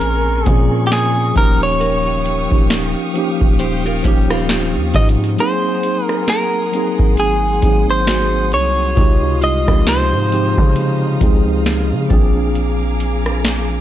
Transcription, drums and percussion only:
0.01 closed hi-hat
0.46 kick, closed hi-hat
0.92 snare, closed hi-hat
1.36 kick, closed hi-hat
1.81 closed hi-hat
2.26 closed hi-hat
2.52 kick
2.70 snare, closed hi-hat
3.16 closed hi-hat
3.41 kick
3.59 closed hi-hat
4.04 kick, closed hi-hat
4.30 cross-stick
4.49 snare, closed hi-hat
4.94 kick, closed hi-hat
5.09 closed hi-hat
5.24 closed hi-hat
5.38 closed hi-hat
5.83 closed hi-hat
6.09 cross-stick
6.28 snare, closed hi-hat
6.73 closed hi-hat
6.99 kick
7.17 closed hi-hat
7.62 kick, closed hi-hat
8.07 snare, closed hi-hat
8.52 closed hi-hat
8.97 kick, closed hi-hat
9.42 closed hi-hat
9.68 kick, cross-stick
9.87 snare, closed hi-hat
10.32 closed hi-hat
10.58 kick
10.76 closed hi-hat
11.21 kick, closed hi-hat
11.66 snare, closed hi-hat
12.10 kick, closed hi-hat
12.55 closed hi-hat
13.00 closed hi-hat
13.26 cross-stick
13.44 snare, closed hi-hat

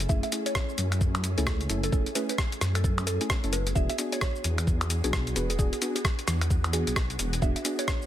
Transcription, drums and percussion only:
0.00 closed hi-hat, cabasa
0.09 kick, cabasa
0.23 closed hi-hat, cabasa
0.32 closed hi-hat, cabasa
0.46 closed hi-hat, cabasa
0.55 kick, cross-stick, cabasa
0.69 cabasa
0.78 closed hi-hat, cabasa
0.92 finger snap, closed hi-hat, cabasa
1.01 kick, cabasa
1.15 finger snap, closed hi-hat, cabasa
1.24 closed hi-hat, cabasa
1.38 closed hi-hat, cabasa
1.47 kick, cross-stick, cabasa
1.61 closed hi-hat, cabasa
1.70 closed hi-hat, cabasa
1.83 closed hi-hat, cabasa
1.92 kick, cabasa
2.06 closed hi-hat, cabasa
2.15 closed hi-hat, cabasa
2.29 closed hi-hat, cabasa
2.38 kick, cross-stick, cabasa
2.52 closed hi-hat, cabasa
2.61 cross-stick, closed hi-hat, cabasa
2.75 finger snap, closed hi-hat, cabasa
2.84 kick, cabasa
2.98 finger snap, closed hi-hat, cabasa
3.07 closed hi-hat, cabasa
3.21 closed hi-hat, cabasa
3.30 kick, cross-stick, cabasa
3.44 closed hi-hat, cabasa
3.53 closed hi-hat, cabasa
3.67 closed hi-hat, cabasa
3.76 kick, cabasa
3.90 closed hi-hat, cabasa
3.98 closed hi-hat, cabasa
4.12 closed hi-hat, cabasa
4.21 kick, cross-stick, cabasa
4.35 cabasa
4.44 closed hi-hat, cabasa
4.58 finger snap, closed hi-hat, cabasa
4.67 kick, cabasa
4.81 finger snap, closed hi-hat, cabasa
4.90 closed hi-hat, cabasa
5.04 closed hi-hat, cabasa
5.13 kick, cross-stick, cabasa
5.27 closed hi-hat, cabasa
5.36 closed hi-hat, cabasa
5.50 closed hi-hat, cabasa
5.59 kick, cabasa
5.73 closed hi-hat, cabasa
5.82 closed hi-hat, cabasa
5.96 closed hi-hat, cabasa
6.05 kick, cross-stick, cabasa
6.19 closed hi-hat, cabasa
6.28 cross-stick, closed hi-hat, cabasa
6.41 finger snap, closed hi-hat, cabasa
6.50 kick, cabasa
6.64 finger snap, closed hi-hat, cabasa
6.73 closed hi-hat, cabasa
6.87 closed hi-hat, cabasa
6.96 kick, cross-stick, cabasa
7.10 closed hi-hat, cabasa
7.19 closed hi-hat, cabasa
7.33 closed hi-hat, cabasa
7.42 kick, cabasa
7.56 closed hi-hat, cabasa
7.65 closed hi-hat, cabasa
7.79 closed hi-hat, cabasa
7.88 kick, cross-stick, cabasa
8.02 cabasa

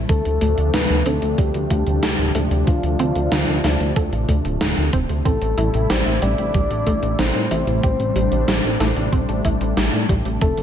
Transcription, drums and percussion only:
0.09 kick, closed hi-hat
0.25 closed hi-hat
0.41 closed hi-hat
0.58 closed hi-hat
0.74 snare, closed hi-hat
0.90 closed hi-hat
1.06 closed hi-hat
1.22 closed hi-hat
1.38 kick, closed hi-hat
1.54 closed hi-hat
1.70 kick, closed hi-hat
1.87 closed hi-hat
2.03 snare, closed hi-hat
2.19 closed hi-hat
2.35 closed hi-hat
2.51 closed hi-hat
2.67 kick, closed hi-hat
2.83 closed hi-hat
2.99 closed hi-hat
3.15 closed hi-hat
3.32 snare, closed hi-hat
3.48 closed hi-hat
3.64 snare, closed hi-hat
3.80 closed hi-hat
3.96 kick, closed hi-hat
4.13 closed hi-hat
4.29 kick, closed hi-hat
4.45 closed hi-hat
4.61 snare, closed hi-hat
4.77 closed hi-hat
4.93 kick, closed hi-hat
5.09 closed hi-hat
5.25 kick, closed hi-hat
5.42 closed hi-hat
5.58 closed hi-hat
5.74 closed hi-hat
5.90 snare, closed hi-hat
6.06 closed hi-hat
6.22 closed hi-hat
6.38 closed hi-hat
6.54 kick, closed hi-hat
6.71 closed hi-hat
6.87 kick, closed hi-hat
7.03 closed hi-hat
7.19 snare, closed hi-hat
7.35 closed hi-hat
7.51 closed hi-hat
7.67 closed hi-hat
7.83 kick, closed hi-hat
8.00 closed hi-hat
8.16 closed hi-hat
8.32 closed hi-hat
8.48 snare, closed hi-hat
8.64 closed hi-hat
8.80 snare, closed hi-hat
8.96 closed hi-hat
9.12 kick, closed hi-hat
9.29 closed hi-hat
9.45 kick, closed hi-hat
9.61 closed hi-hat
9.77 snare, closed hi-hat
9.93 closed hi-hat
10.09 kick, closed hi-hat
10.25 closed hi-hat
10.41 kick, closed hi-hat
10.58 closed hi-hat

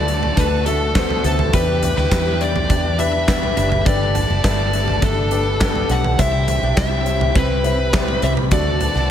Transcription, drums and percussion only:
0.08 closed hi-hat
0.23 floor tom
0.37 kick, closed hi-hat
0.66 closed hi-hat
0.95 kick, snare, clap, closed hi-hat
1.10 floor tom
1.24 closed hi-hat
1.39 floor tom
1.53 kick, closed hi-hat
1.83 closed hi-hat, floor tom
1.97 snare
2.12 kick, snare, clap, closed hi-hat
2.41 closed hi-hat
2.56 floor tom
2.70 kick, closed hi-hat
2.99 closed hi-hat
3.28 kick, snare, clap, closed hi-hat
3.43 floor tom
3.57 closed hi-hat
3.72 floor tom
3.86 kick, closed hi-hat
4.15 closed hi-hat, floor tom
4.44 kick, snare, clap, closed hi-hat
4.73 closed hi-hat
4.88 floor tom
5.02 kick, closed hi-hat
5.31 closed hi-hat
5.61 kick, snare, clap, closed hi-hat
5.75 floor tom
5.90 closed hi-hat
6.04 floor tom
6.19 kick, closed hi-hat
6.48 closed hi-hat, floor tom
6.77 kick, snare, clap, closed hi-hat
7.06 closed hi-hat
7.21 floor tom
7.36 kick, closed hi-hat
7.64 closed hi-hat
7.93 kick, snare, clap, closed hi-hat
8.08 floor tom
8.22 closed hi-hat
8.37 floor tom
8.51 kick, closed hi-hat
8.80 closed hi-hat, floor tom
8.95 snare

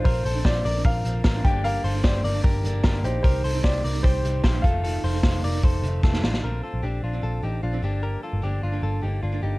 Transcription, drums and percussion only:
0.05 kick, hi-hat pedal, open hi-hat
0.25 hi-hat pedal, open hi-hat
0.45 kick, snare, hi-hat pedal, open hi-hat
0.65 hi-hat pedal, open hi-hat
0.85 kick, hi-hat pedal, open hi-hat
1.05 hi-hat pedal, open hi-hat
1.24 kick, snare, hi-hat pedal, open hi-hat
1.45 kick, hi-hat pedal, open hi-hat
1.64 hi-hat pedal, open hi-hat
1.84 hi-hat pedal, open hi-hat
2.04 kick, snare, hi-hat pedal, open hi-hat
2.24 hi-hat pedal, open hi-hat
2.44 kick, hi-hat pedal, open hi-hat
2.64 hi-hat pedal, open hi-hat
2.84 kick, snare, hi-hat pedal, open hi-hat
3.04 hi-hat pedal, open hi-hat
3.24 kick, hi-hat pedal, open hi-hat
3.44 hi-hat pedal, open hi-hat
3.64 kick, snare, hi-hat pedal, open hi-hat
3.84 hi-hat pedal, open hi-hat
4.04 kick, hi-hat pedal, open hi-hat
4.25 hi-hat pedal, open hi-hat
4.44 kick, snare, hi-hat pedal, open hi-hat
4.64 kick, hi-hat pedal, open hi-hat
4.84 hi-hat pedal, open hi-hat
5.04 hi-hat pedal, open hi-hat
5.23 kick, snare, hi-hat pedal, open hi-hat
5.43 hi-hat pedal, open hi-hat
5.64 kick, hi-hat pedal, open hi-hat
5.83 hi-hat pedal, open hi-hat
6.03 kick, snare
6.13 snare
6.24 snare
6.34 snare

